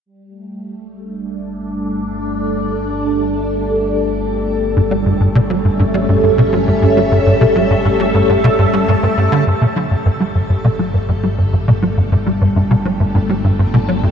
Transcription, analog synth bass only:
4.76 G2
4.91 G3
5.06 G2
5.20 G2
5.35 B2
5.50 F#3
5.65 G2
5.79 G2
5.94 G3
6.09 G2
6.23 G2
6.38 B2
6.53 F#3
6.68 G2
6.82 G2
6.97 G3
7.12 G2
7.26 G2
7.41 B2
7.56 F#3
7.70 G2
7.85 G2
8.00 G3
8.14 G2
8.29 G2
8.44 B2
8.59 G2
8.73 G3
8.88 G2
9.03 G2
9.17 G2
9.32 D3
9.47 G2
9.61 B2
9.76 F#3
9.91 G2
10.05 G2
10.20 G3
10.35 G2
10.49 G2
10.64 B2
10.79 F#3
10.94 G2
11.09 G2
11.23 G3
11.38 G2
11.53 G2
11.68 B2
11.82 F#3
11.97 G2
12.12 G2
12.26 G3
12.41 G2
12.56 G2
12.71 B2
12.85 F#3
13.00 G2
13.15 G2
13.29 G3
13.44 G2
13.59 G2
13.74 B2
13.88 F#3
14.03 G2

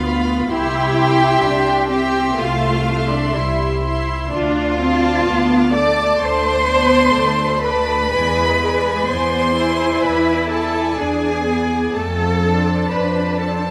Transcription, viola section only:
Already playing: B3
0.50 E4
1.44 D4
1.91 C4
2.37 A3
3.33 G3
3.83 E4
4.32 D4
4.80 C4
5.27 B3
5.72 A3
6.20 A3
6.67 B3
7.14 A3
8.10 G#3
9.08 B3
9.55 E4
10.99 D4
11.47 B3
11.96 A3
12.43 D4

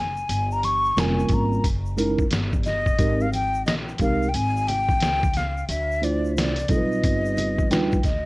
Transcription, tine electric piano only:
0.96 G3 A#3 C#4 F4 A#4
1.97 G#3 C#4 D#4 E4 A#4
2.99 G#3 C4 D#4 G4 A#4
4.00 G#3 C4 D#4 G4 A#4
6.02 A3 D4 E4 F4 C5
6.69 G3 C4 D#4 F4 A4
6.77 B4
7.71 G3 D4 D#4 F4 B4 G5
8.05 D#5

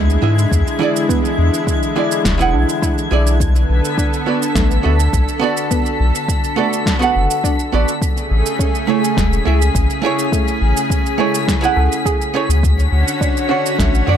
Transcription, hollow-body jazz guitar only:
0.22 E3 E4 G#4 E5
0.79 E3 E4 G#4
0.83 D5
1.96 E3 E4 G#4 D5
2.38 E3 E4 G#4 F#5
3.11 E3 E4 G#4 D5
4.26 B3 F#4 A4 D5
4.83 B3 F#4 A4 E5
5.39 B3 F#4 A4
5.44 D5
6.56 B3 F#4 A4 D5
6.99 B3 F#4 A4
7.03 F#5
7.72 B3 F#4 A4 D5
8.87 A3 E4 G#4 C#5
9.45 A3 E4 G#4 E5
10.02 A3 E4 G#4
10.06 C#5
11.18 A3 E4 G#4 C#5
11.61 A3 E4 G#4 F#5
12.34 A3 E4 G#4 C#5
13.49 D3 D4 F#4 C#5
14.07 D3 D4 F#4 D5

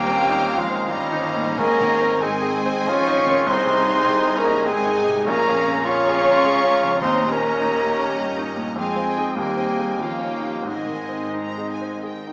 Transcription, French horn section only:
Already playing: G4
0.56 F4
0.89 D#4
1.58 A#4
2.22 G#4
2.88 C#5
3.49 C5
4.37 A#4
4.67 G#4
5.27 A#4
5.86 C#5
7.02 C5
7.31 A#4
8.79 G#4
9.38 G4
10.01 F4
10.68 D#4

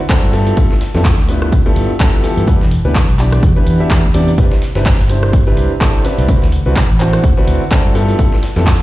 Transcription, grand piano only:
0.10 C4 D4 E4 F#4 A4
0.33 G2 B3 E4 F4 G4 A4
0.57 E4 F4 G4 A4
0.94 G2 B3 E4 F4 G4 A4
1.29 G2 B3 E4 F4 G4 B4
1.66 G2 B3 E4 F4 G4 A4
2.00 G2 B3 E4 F4 G4 A4
2.24 E3 B3 E4 F4 G4 A4
2.48 E3 B3 D4 E4 G4 B4
2.85 E3 B3 D4 E4 G4 B4
3.19 E3 B3 D4 E4 G4 D5
3.56 E3 B3 D4 E4 G4 B4
3.80 E3 B3 D4 E4 G4 E5
4.14 C3 B3 D4 E4 G4 D5
4.38 C3 C4 D4 E4 G4 B4
4.75 C3 C4 D4 E4 G4 B4
5.10 C3 C4 D4 E4 G4 C5
5.47 C3 C4 D4 E4 G4 B4
5.81 C3 C4 D4 E4 G4 A4
6.05 D3 C4 D4 E4 G4 B4
6.29 D3 C4 D4 E4 F#4 B4
6.66 D3 C4 D4 E4 F#4 B4
7.00 D3 C4 D4 E4 F#4 C5
7.37 D3 C4 D4 E4 F#4 B4
7.71 C4 D4 E4 F#4 A4
7.95 G2 B3 E4 F4 G4 A4
8.19 G2 B3 E4 F4 G4
8.56 G2 B3 E4 F4 G4 A4

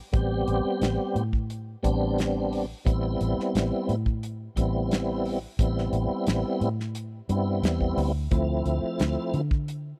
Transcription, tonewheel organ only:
0.13 G3 B3 C4 G4
1.83 G3 B3 C4 D4
2.85 G3 B3 C4 E4
4.56 G3 B3 C4 E4
5.59 G3 B3 C4 E4
7.29 G3 B3 C4 E4
8.31 F3 A3 C4 E4

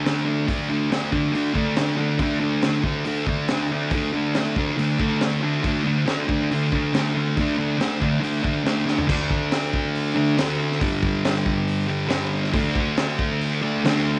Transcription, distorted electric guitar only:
0.05 D3 A3 D4
0.25 A3 D4
0.47 D3 A3 D4
0.69 A3 D4
0.91 D3 A3 D4
1.12 A3 D4
1.32 D3 A3 D4
1.53 D3 A3 D4
1.77 D3 A3 D4
1.96 A3 D4
2.19 D3 A3 D4
2.40 A3 D4
2.63 D3 A3 D4
2.84 A3 D4
3.05 D3 A3 D4
3.27 D3 A3 D4
3.49 D3 A3 D4
3.72 A3 D4
3.92 D3 A3 D4
4.13 A3 D4
4.36 D3 A3 D4
4.57 A3 D4
4.77 D3 A3 D4
4.99 D3 A3 D4
5.22 D3 A3 D4
5.42 A3 D4
5.63 D3 A3 D4
5.84 A3 D4
6.06 D3 A3 D4
6.28 A3 D4
6.51 D3 A3 D4
6.73 D3 A3 D4
6.93 D3 A3 D4
7.15 A3 D4
7.37 D3 A3 D4
7.58 A3 D4
7.77 D3 A3 D4
8.01 A3 D4
8.20 D3 A3 D4
8.43 D3 A3 D4
8.63 D3 A3 D4
8.86 A3 D4
9.07 D3 A3 D4
10.15 D3 A3 D4
10.37 D3 A3 D4
10.80 G2 D3 G3
11.87 G2 D3 G3
12.08 G2 D3 G3
12.53 D3 A3 D4
13.62 D3 A3 D4
13.84 D3 A3 D4

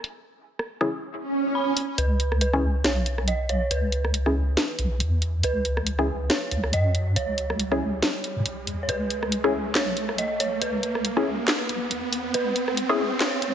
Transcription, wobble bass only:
1.98 C#2
2.85 B1
3.71 C#2
4.79 B1
5.00 E2
5.43 C#2
6.51 C#2
6.73 F#2
7.16 C#2
8.36 G#2
8.46 B1
8.67 E2
8.89 C#2
9.75 B1
10.62 C#2
11.69 B1
11.91 E2
12.34 C#2
13.42 C#2

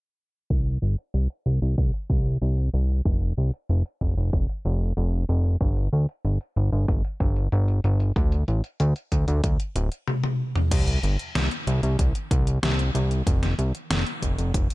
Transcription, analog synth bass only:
0.50 C2
0.82 G1
1.14 C2
1.46 C2
1.62 C2
1.78 C2
2.10 C2
2.42 C2
2.74 C2
3.05 F1
3.38 C2
3.69 F1
4.01 F1
4.17 F1
4.33 F1
4.65 F1
4.97 F1
5.29 F1
5.61 G1
5.93 D2
6.25 G1
6.56 G1
6.72 G1
6.88 G1
7.20 G1
7.52 G1
7.84 G1
8.16 D2
8.48 A1
8.80 D2
9.12 D2
9.28 D2
9.44 D2
9.76 D1
10.71 C2
11.03 G1
11.35 C2
11.67 C2
11.83 C2
11.99 C2
12.31 C2
12.63 C2
12.95 C2
13.27 F1
13.59 C2
13.90 F1
14.22 F1
14.38 F1
14.54 F1

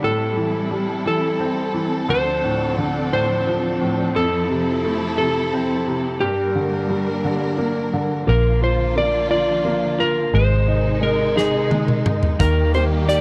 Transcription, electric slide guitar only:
0.04 A4
1.07 A4
2.10 C5
3.13 C5
4.16 A4
5.18 A4
6.20 G4
8.29 A#4
8.64 C5
8.98 D5
9.31 D5
10.00 A#4
10.35 C5
11.03 A#4
11.37 G#4
12.40 A#4
12.75 C5
13.09 D5

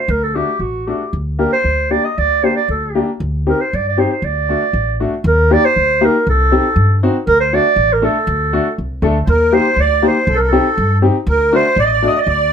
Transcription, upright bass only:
0.08 D2
0.59 A1
1.13 D2
1.64 D2
2.18 D2
2.68 D2
3.20 D2
3.73 G2
4.22 D2
4.73 A1
5.24 D#2
5.76 D2
6.27 C2
6.76 G2
7.27 D2
7.76 A1
8.27 D2
8.78 C2
9.02 D2
9.27 D#2
9.76 D2
10.27 C2
10.78 G2
11.27 D2
11.76 A1
12.27 D2

